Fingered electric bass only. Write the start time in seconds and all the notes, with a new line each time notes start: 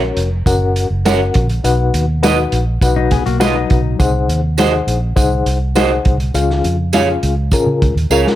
0.17 F1
0.46 F#1
0.90 F#1
1.36 A#1
1.64 B1
1.94 D#2
2.52 A#1
2.82 B1
3.26 B1
3.71 B1
3.99 C2
4.29 D#2
4.87 A#1
5.17 C2
5.46 C2
6.06 C2
6.34 C#2
6.64 F2
7.23 C#2
7.67 C#3
7.83 C#2
7.96 D#2
8.10 C#2